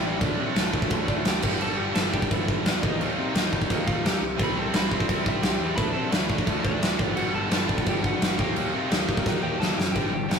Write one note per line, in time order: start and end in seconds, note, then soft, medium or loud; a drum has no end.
0.00 0.17 A1 loud
0.00 0.19 C3 medium
0.00 0.20 G3 medium
0.00 0.20 C4 medium
0.00 0.20 E4 medium
0.06 1.06 D4 medium
0.06 1.08 D5 loud
0.19 0.34 D2 medium
0.19 0.72 D3 medium
0.19 0.72 F#3 medium
0.19 0.72 A3 medium
0.19 0.71 D4 loud
0.19 kick loud
0.19 crash medium
0.39 0.52 C3 medium
0.56 0.70 D2 medium
0.56 snare loud
0.56 crash medium
0.72 0.87 D2 medium
0.72 1.42 D3 medium
0.72 1.42 F#3 medium
0.72 1.42 A3 medium
0.72 1.41 D4 medium
0.72 kick medium
0.82 kick medium
0.90 1.04 D2 loud
0.90 kick loud
0.90 crash medium
1.08 1.21 D2 loud
1.08 1.15 D4 medium
1.08 1.14 D5 medium
1.08 kick medium
1.25 1.39 D2 medium
1.25 1.59 G4 medium
1.25 1.59 G5 medium
1.25 snare loud
1.25 crash medium
1.42 1.56 G1 medium
1.42 1.93 G2 loud
1.42 1.94 D3 medium
1.42 1.96 G3 medium
1.42 1.95 B3 medium
1.42 1.95 D4 medium
1.42 kick loud
1.42 crash loud
1.61 1.74 G1 loud
1.61 1.77 A4 medium
1.61 1.77 A5 medium
1.61 crash medium
1.77 1.92 G1 medium
1.77 1.94 G4 medium
1.77 1.94 G5 medium
1.94 2.09 G1 loud
1.94 2.81 G2 medium
1.94 2.81 D3 medium
1.94 2.82 G3 medium
1.94 2.82 B3 medium
1.94 2.82 D4 loud
1.94 2.11 A4 medium
1.94 2.12 A5 medium
1.94 snare loud
1.94 crash medium
2.12 2.27 G1 medium
2.12 2.29 G4 medium
2.12 2.31 G5 loud
2.12 kick medium
2.22 kick medium
2.31 2.57 G1 loud
2.31 2.63 E4 medium
2.31 2.67 E5 loud
2.31 kick medium
2.31 crash medium
2.48 kick medium
2.66 2.79 E2 loud
2.66 2.82 D4 medium
2.66 2.85 D5 medium
2.66 snare loud
2.66 crash medium
2.81 2.96 D#2 medium
2.81 3.32 D#3 medium
2.81 3.34 G3 medium
2.81 3.34 A#3 medium
2.81 3.34 D#4 loud
2.81 3.84 D#4 medium
2.81 3.88 D#5 medium
2.81 kick loud
3.00 3.13 D#2 loud
3.00 crash medium
3.18 3.31 C3 loud
3.33 3.48 D#2 loud
3.33 4.20 D#3 medium
3.33 4.21 G3 medium
3.33 4.21 A#3 medium
3.33 4.22 D#4 medium
3.33 snare loud
3.33 crash medium
3.53 3.66 D#2 medium
3.53 kick medium
3.62 kick medium
3.70 3.83 D#2 loud
3.70 kick loud
3.70 crash medium
3.87 4.01 D#2 medium
3.87 4.04 F4 medium
3.87 4.05 F5 medium
3.87 kick medium
4.03 4.17 D#2 medium
4.03 4.38 G4 medium
4.03 4.40 G5 medium
4.03 snare loud
4.03 crash medium
4.21 4.35 C2 medium
4.38 4.53 C2 medium
4.38 4.90 C3 loud
4.38 4.90 G3 medium
4.38 4.90 C4 loud
4.38 4.89 E4 loud
4.38 kick loud
4.38 crash medium
4.43 4.57 B4 medium
4.43 4.58 B5 loud
4.56 4.70 C2 medium
4.56 4.74 A4 medium
4.56 4.75 A5 loud
4.74 4.87 C2 medium
4.74 4.92 B4 medium
4.74 4.91 B5 medium
4.74 snare loud
4.74 crash medium
4.90 5.05 C2 medium
4.90 5.75 C3 medium
4.90 5.76 G3 medium
4.90 5.77 C4 medium
4.90 5.77 E4 medium
4.90 kick medium
5.00 kick medium
5.09 5.35 C2 medium
5.09 kick loud
5.09 crash medium
5.26 5.44 E4 medium
5.26 5.43 E5 medium
5.26 kick medium
5.42 5.56 C2 loud
5.42 5.77 G4 medium
5.42 5.76 G5 medium
5.42 snare loud
5.42 crash medium
5.60 5.74 E2 medium
5.75 5.91 D2 loud
5.75 6.28 D3 medium
5.75 6.27 F#3 medium
5.75 6.27 A3 medium
5.75 6.27 D4 loud
5.75 5.94 B4 medium
5.75 5.93 B5 loud
5.75 kick loud
5.75 crash medium
5.93 6.09 C3 loud
5.93 6.12 A4 medium
5.93 6.11 A5 loud
6.11 6.26 D2 medium
6.11 6.29 B4 medium
6.11 6.30 B5 medium
6.11 snare loud
6.11 crash medium
6.27 6.43 D2 medium
6.27 6.98 D3 medium
6.27 6.98 F#3 medium
6.27 6.98 A3 medium
6.27 6.97 D4 medium
6.27 kick medium
6.38 kick medium
6.47 6.61 D2 loud
6.47 kick loud
6.47 crash medium
6.64 6.78 D2 medium
6.64 7.13 D4 medium
6.64 7.08 D5 medium
6.64 kick medium
6.80 6.95 D2 medium
6.80 snare loud
6.80 crash medium
6.98 7.13 G1 medium
6.98 7.49 G2 medium
6.98 7.50 D3 medium
6.98 7.51 G3 loud
6.98 7.51 B3 medium
6.98 7.52 D4 loud
6.98 kick loud
7.08 7.19 C5 medium
7.16 7.30 G1 loud
7.16 7.33 F#4 medium
7.16 7.35 F#5 loud
7.16 crash medium
7.33 7.47 G1 loud
7.33 7.83 A4 medium
7.33 7.88 A5 loud
7.50 7.64 G1 medium
7.50 8.37 G2 medium
7.50 8.36 D3 medium
7.50 8.37 G3 medium
7.50 8.38 B3 medium
7.50 8.39 D4 medium
7.50 snare loud
7.50 crash medium
7.69 7.82 G1 medium
7.69 kick medium
7.78 kick medium
7.86 8.13 G1 loud
7.86 8.04 G4 medium
7.86 8.06 G5 loud
7.86 kick loud
7.86 crash medium
8.04 8.38 F#4 medium
8.04 8.39 F#5 loud
8.04 kick medium
8.21 8.34 G1 loud
8.21 snare loud
8.21 crash medium
8.36 8.52 D#2 medium
8.36 8.88 D#3 medium
8.36 8.89 G3 medium
8.36 8.90 A#3 medium
8.36 8.90 D#4 loud
8.36 9.42 G5 medium
8.36 kick loud
8.40 9.43 G4 medium
8.56 8.70 D#2 loud
8.56 crash medium
8.74 8.87 C3 medium
8.89 9.05 D#2 medium
8.89 9.76 D#3 medium
8.89 9.77 G3 medium
8.89 9.77 A#3 medium
8.89 9.78 D#4 medium
8.89 snare loud
8.89 crash medium
9.08 9.22 D#2 medium
9.08 kick medium
9.17 kick medium
9.26 9.39 D#2 loud
9.26 kick loud
9.26 snare medium
9.43 9.56 D#2 medium
9.43 9.60 G4 medium
9.43 9.59 G5 medium
9.59 9.73 D#2 loud
9.59 9.77 A4 medium
9.59 9.78 A5 loud
9.59 snare medium
9.77 9.97 F#2 medium
9.77 9.83 G4 medium
9.77 9.82 G5 medium
9.77 snare loud
9.92 10.11 G1 medium
9.92 10.12 G2 medium
9.92 10.12 D3 medium
9.92 10.12 G3 medium
9.92 10.11 G4 medium
9.92 10.12 G5 loud
9.92 kick medium
9.92 crash medium
10.12 10.28 G1 medium
10.12 10.28 G2 medium
10.12 10.28 D3 medium
10.12 10.39 G4 medium
10.12 10.39 G5 loud
10.29 10.39 G1 medium
10.29 10.39 G2 medium
10.29 10.39 D3 medium
10.29 snare loud
10.29 crash medium